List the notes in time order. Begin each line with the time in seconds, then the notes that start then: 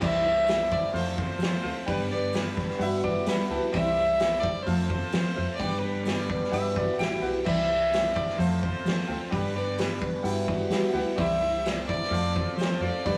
0.00 C2 C3 E3 G3 C4 D4 E4 G4 C5 D5 E5, kick, crash
0.23 G3 C4 D4 E4 C5
0.46 C3 E3 G3 C4 D4 E4 C5, snare, open hi-hat, tambourine
0.70 G3 D4 E4 C5 D5, kick
0.93 F2 C3 F3 A3 C4 F4 A4 C5 F5, open hi-hat
1.16 F3 A3 C4 F4 C5, kick
1.39 F3 A3 C4 F4 C5, open hi-hat, tambourine
1.43 snare
1.62 D2 F3 A3 F4 A4 C5 F5
1.67 C4
1.86 G2 D3 G3 B3 D4 G4 B4 D5 G5, kick, open hi-hat
2.10 G3 B3 D4 G4 B4 D5
2.33 G2 D3 G3 B3 D4 G4 B4, snare, open hi-hat, tambourine
2.37 B4
2.57 D4 G4 B4, kick, snare
2.70 snare
2.78 G2 E3 B3 G4 B4 E5 F#5, open hi-hat
2.82 G3 E4 F#4 B4 E5
3.04 B3 E4 F#4 G4 B4 D5, kick
3.26 G3 B3 E4 F#4 G4 B4, snare, open hi-hat, tambourine
3.50 C#2 B3 E4 F#4 G4 B4 E5 A5
3.71 C2 C3 D3 E3 C4 E4 G4 C5 D5 E5, kick, open hi-hat
3.75 G3 D4 E4 C5
3.96 C4 D4 E4 G4 C5
4.00 G3
4.19 C3 G3 C4 D4 E4 G4 C5, snare, open hi-hat, tambourine
4.40 C5 D5, kick
4.44 G3 D4 E4
4.63 F3 F4 A4 C5 F5, open hi-hat
4.67 F2 F3 A3 C4 F4 A4 C5
4.86 C5
4.90 C4 F4 A4 C5, kick
5.12 F3 A3 C4 F4 A4 C5, snare, open hi-hat, tambourine
5.35 F2 C4 F4 A4 C5 E5
5.55 G3 D4 G4 B4 D5
5.59 G2 D3 B3 G4 B4 D5 G5, kick, open hi-hat
5.79 B4
5.83 G3 B3 D4 G4 B4
6.04 G2 D3 G3 B3 D4 G4 D5, snare, open hi-hat, tambourine
6.08 B4
6.28 D4 G4 B4, kick
6.44 snare
6.51 G2 G3 B3 E4 F#4 G4 B4 E5 F#5, open hi-hat
6.75 B3 E4 F#4 G4 B4 D5, kick
6.99 A1 G3 B3 E4 F#4 G4 B4 G5, snare, open hi-hat, tambourine
7.21 B1 B3 E4 F#4 G4 B4 E5 F#5
7.44 C2 C3 E3 G3 C4 D4 E4 G4 C5 D5 E5, kick, crash
7.67 G3 C4 D4 E4 G4 C5
7.90 C3 G3 C4 D4 E4 G4 C5, snare, open hi-hat, tambourine
8.15 G3 D4 E4 C5 D5, kick
8.30 snare
8.37 F2 F3 A3 C4 F4 A4 C5 F5, open hi-hat
8.60 C4 F4 A4 C5, kick
8.84 F3 A3 C4 F4 A4 C5, snare, open hi-hat, tambourine
9.07 D2 C4 F4 A4 C5 G5
9.30 G2 D3 G3 B3 D4 G4 B4 D5 G5, kick, open hi-hat
9.54 G3 B3 D4 G4 B4 D5
9.78 G2 D3 G3 B3 D4 G4 B4, snare, open hi-hat, tambourine
10.01 D4 G4 B4, kick
10.22 G2 E3 G3 B3 E4 F#4 G4 B4 E5 F#5, open hi-hat
10.47 B3 E4 F#4 G4 B4, kick
10.70 G3 B3 E4 F#4 G4 B4, snare, open hi-hat, tambourine
10.93 D2 B3 E4 F#4 G4 B4 E5 F#5
11.15 C2 C3 D3 E3 G3 C4 D4 E4 G4 C5 D5 E5, kick, open hi-hat
11.20 G4
11.40 G3 C4 D4 E4 G4 C5
11.63 C3 G3 C4 D4 E4 G4 C5, snare, open hi-hat, tambourine
11.87 G3 D4 E4 C5 D5, kick
12.03 snare
12.10 F2 F3 A3 C4 F4 A4 C5 F5, open hi-hat
12.34 C4 F4 A4 C5, kick
12.57 F3 A3 C4 F4 A4 C5, snare, open hi-hat, tambourine
12.80 F2 C4 F4 A4 C5 D5 F5
13.04 G2 D3 G3 B3 D4 G4 B4 D5, kick, open hi-hat